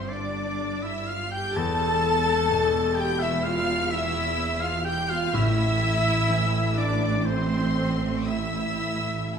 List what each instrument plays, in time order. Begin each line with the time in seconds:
Already playing: double bass section G1, grand piano G2 D3, cello section G2, viola section C4, french horn section C4, oboe C5, violin section C5 C6, flute C5
0.09 viola section D4, french horn section D4, oboe D5, violin section D5
0.13 flute D5, violin section D6
0.82 viola section E4, french horn section E4, oboe E5, violin section E5 E6
0.87 flute E5
1.07 french horn section F4, viola section F4, oboe F5, violin section F5 F6, flute F5
1.31 french horn section G4, viola section G4, oboe G5, violin section G5 G6, flute G5
1.55 double bass section E1, grand piano E2, cello section E2, viola section A4, french horn section A4, oboe A5, flute A5, violin section A5 A6
2.50 grand piano B2
2.95 viola section G4, oboe G5, violin section G5 G6, flute G5
3.01 french horn section G4
3.19 viola section E4, french horn section E4, oboe E5, violin section E5 E6, flute E5
3.43 viola section F4, french horn section F4, oboe F5, violin section F5 F6, flute F5
3.90 viola section E4, french horn section E4, oboe E5, flute E5, violin section E5 E6
4.60 viola section F4, french horn section F4, oboe F5, flute F5, violin section F5 F6
4.85 viola section G4, french horn section G4, oboe G5, violin section G5 G6, flute G5
5.10 french horn section F4, viola section F4, oboe F5, violin section F5 F6, flute F5
5.33 double bass section A1, grand piano A2, cello section A2, timpani A2, viola section E4, french horn section E4, violin section E5 E6, oboe E5, flute E5
6.30 grand piano E3
6.77 viola section D4, french horn section D4, flute D5, violin section D5 D6, oboe D5
7.25 viola section C4, french horn section C4, violin section C5 C6, oboe C5, flute C5
8.27 viola section E4, french horn section E4, violin section E5 E6, oboe E5, flute E5